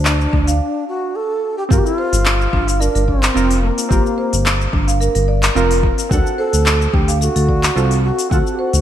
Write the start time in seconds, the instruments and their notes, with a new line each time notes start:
Already playing: analog synth bass D2, bansuri D4, marimba C5
0.05 clap, cabasa
0.21 cabasa
0.33 analog synth bass D2, marimba D4, kick
0.47 marimba F5, open hi-hat, cabasa
0.88 bansuri F#4
1.15 bansuri A4
1.58 bansuri G4
1.69 analog synth bass G1, synth stab C4 F4, bansuri F4, marimba G4, kick, cabasa
1.73 synth stab A#4
1.78 bansuri G4
1.85 bansuri E4, cabasa
1.98 bansuri F4, marimba C5
2.13 analog synth bass G1, open hi-hat, cabasa
2.26 clap, cabasa
2.41 cabasa
2.53 analog synth bass G1, marimba D4, kick
2.68 marimba F5, open hi-hat, cabasa
2.80 bansuri D4, marimba A#4, cabasa
2.95 analog synth bass G1, marimba A#4, open hi-hat, cabasa
3.07 bansuri C4, marimba D5, kick
3.23 clap, open hi-hat, cabasa
3.34 analog synth bass F1, synth stab C4 F4 A#4, cabasa
3.51 open hi-hat, cabasa
3.62 bansuri A#3
3.78 open hi-hat, cabasa
3.89 analog synth bass G1, synth stab C4 F4, marimba G4, kick, cabasa
3.93 synth stab A#4
4.06 cabasa
4.18 marimba C5
4.33 analog synth bass G1, open hi-hat, cabasa
4.46 clap, cabasa
4.61 cabasa
4.73 analog synth bass G1, marimba D4, kick
4.88 marimba F5, open hi-hat, cabasa
5.01 marimba A#4, cabasa
5.15 analog synth bass G1, marimba A#4, open hi-hat, cabasa
5.28 marimba D5
5.43 clap, open hi-hat, cabasa
5.55 analog synth bass F1, synth stab C4 F4 A#4, cabasa
5.71 open hi-hat, cabasa
5.83 kick
5.98 open hi-hat, cabasa
6.09 analog synth bass D2, synth stab C4 A4 F#5, bansuri D4, marimba F#4, kick, cabasa
6.27 cabasa
6.38 bansuri A4, marimba C5
6.53 analog synth bass D2, open hi-hat, cabasa
6.66 clap, cabasa
6.82 cabasa
6.93 analog synth bass D2, marimba D4, bansuri G4, kick
7.08 marimba F5, open hi-hat, cabasa
7.21 bansuri F#4, marimba A4, cabasa
7.36 analog synth bass D2, marimba A4, open hi-hat, cabasa
7.49 marimba D5, kick
7.63 clap, open hi-hat, cabasa
7.75 analog synth bass C2, synth stab C4 F4 A4, cabasa
7.91 open hi-hat, cabasa
8.04 bansuri F#4
8.19 open hi-hat, cabasa
8.29 analog synth bass D2, synth stab C4 A4 F#5, bansuri F4, marimba F#4, kick, cabasa
8.47 cabasa
8.52 bansuri G4
8.59 bansuri F#4, marimba C5
8.73 analog synth bass D2, open hi-hat, cabasa